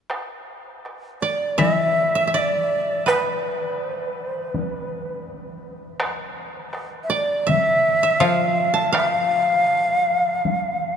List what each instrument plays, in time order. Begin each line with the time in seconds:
0.10 taiko rim
0.86 taiko rim
1.22 shakuhachi D5, koto D5
1.58 koto E3 E5, shakuhachi E5, taiko high
1.92 koto D5
2.15 koto E5
2.27 koto E5
2.34 koto D5, shakuhachi E5
2.39 shakuhachi D5
3.06 koto B4, shakuhachi B4, taiko rim
3.84 shakuhachi C5
4.04 shakuhachi B4
4.27 shakuhachi C5
4.47 shakuhachi B4
4.55 taiko high
6.00 taiko rim
6.73 taiko rim
7.03 shakuhachi E5
7.10 koto D5, shakuhachi D5
7.47 koto E5, shakuhachi E5, taiko high
8.03 koto E5
8.20 koto F3 F5, shakuhachi F5
8.74 koto A5
8.92 koto F5, shakuhachi F5, taiko rim
10.45 taiko high